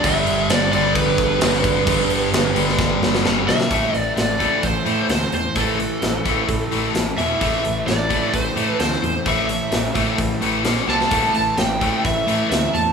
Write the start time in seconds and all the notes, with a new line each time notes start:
Already playing: D4
0.03 G1 G2 D3 G3 E5, kick, crash
0.27 G1, crash
0.49 G1 D5, snare, crash
0.71 G1 G2 D3 G3 D5, crash
0.94 G1 B4, kick, crash
1.18 G1, kick, crash
1.40 G1 G2 D3 G3, snare, crash
1.54 snare
1.64 G1, kick, crash
1.85 G1 G2 D3 G3, kick, crash
2.09 G1, crash
2.32 G1, snare, crash
2.54 G1 G2 D3 G3, crash
2.68 snare
2.79 G1, kick, snare
3.02 G1, snare
3.15 snare
3.23 G1 G2 D3 G3, snare
3.47 B1 E5, snare
3.61 snare
3.70 A1 A2 E3 A3, kick, open hi-hat
3.93 A1 A2 E3, open hi-hat
3.97 D5
4.16 A1 A2 E3 D5, snare, open hi-hat
4.39 A2 E3 A3, kick, open hi-hat
4.62 A1 A2 E3 C5, kick, open hi-hat
4.85 A2 E3 A3, open hi-hat
5.09 D2 A2 E3 C5, snare, open hi-hat
5.22 snare
5.32 E2 A2 E3 C5, open hi-hat
5.55 A1 A2 E3 A3 A4, kick, open hi-hat
5.79 A2 E3, open hi-hat
6.02 A1 A2 E3, snare, open hi-hat
6.25 A1 A2 E3 A3, kick, open hi-hat
6.49 A1 A2 E3, kick, open hi-hat
6.71 A1 A2 E3 A3, open hi-hat
6.95 A1 A2 E3, snare, open hi-hat
7.17 E1 E2 B2 E3 E5, open hi-hat
7.40 A1 A2 E3 A3, kick, open hi-hat
7.63 A1 A2 E3, open hi-hat
7.86 A1 A2 E3 D5, snare, open hi-hat
8.09 A2 E3 A3, kick, open hi-hat
8.33 A1 A2 E3 C5, kick, open hi-hat
8.55 A2 E3 A3, open hi-hat
8.79 D2 A2 E3 C5, snare, open hi-hat
8.92 snare
9.02 E2 A2 E3, open hi-hat
9.25 A1 A2 E3 A3 E5, kick, open hi-hat
9.49 A2 E3, open hi-hat
9.71 A1 A2 E3, snare, open hi-hat
9.94 A1 A2 E3 A3, kick, open hi-hat
10.17 A1 A2 E3, kick, open hi-hat
10.41 A1 A2 E3 A3, open hi-hat
10.64 A#1 A#2 F3 A#3, snare, open hi-hat
10.77 snare
10.87 C2 C3 G3 C4 A5, snare
11.01 snare
11.10 A1 A2 E3 A3, kick, open hi-hat
11.34 A1 A2 E3 A5, open hi-hat
11.57 A1 A2 E3 G5, snare, open hi-hat
11.81 A2 E3 A3, kick, open hi-hat
12.05 A1 A2 E3 E5, kick, open hi-hat
12.27 A2 E3 A3, open hi-hat
12.51 D2 A2 E3 E5, snare, open hi-hat
12.64 snare
12.74 E2 A2 E3 A5, open hi-hat